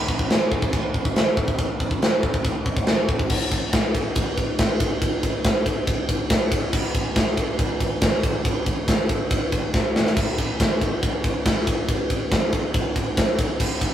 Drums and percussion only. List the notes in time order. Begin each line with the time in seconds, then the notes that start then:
0.08 kick
0.19 kick
0.30 snare, china
0.52 kick
0.62 kick
0.73 kick, china
0.94 kick
1.05 kick
1.16 snare, china
1.37 kick
1.48 kick
1.59 kick, china
1.80 kick
1.91 kick
2.02 snare, china
2.23 kick
2.34 kick
2.45 kick, china
2.66 kick
2.77 kick
2.87 snare, china
3.09 kick
3.19 kick
3.30 kick, crash
3.52 kick, ride
3.73 kick, snare, ride
3.95 kick, ride
4.16 kick, ride
4.37 kick, ride
4.59 kick, snare, ride
4.80 kick, ride
5.02 kick, ride
5.23 kick, ride
5.44 kick, snare, ride
5.66 kick, ride
5.87 kick, ride
6.09 kick, ride
6.30 kick, snare, ride
6.52 kick, ride
6.73 kick, crash
6.95 kick, ride
7.16 kick, snare, ride
7.37 kick, ride
7.59 kick, ride
7.80 kick, ride
8.01 kick, snare, ride
8.23 kick, ride
8.45 kick, ride
8.66 kick, ride
8.88 kick, snare, ride
9.09 kick, ride
9.31 kick, ride
9.52 kick, ride
9.74 kick, snare
9.96 snare
10.07 snare
10.17 kick, crash
10.38 kick, ride
10.60 kick, snare, ride
10.81 kick, ride
11.03 kick, ride
11.24 kick, ride
11.46 kick, snare, ride
11.67 kick, ride
11.88 kick, ride
12.10 kick, ride
12.32 kick, snare, ride
12.53 kick, ride
12.74 kick, ride
12.96 kick, ride
13.17 kick, snare, ride
13.39 kick, ride
13.60 kick, crash
13.81 kick, ride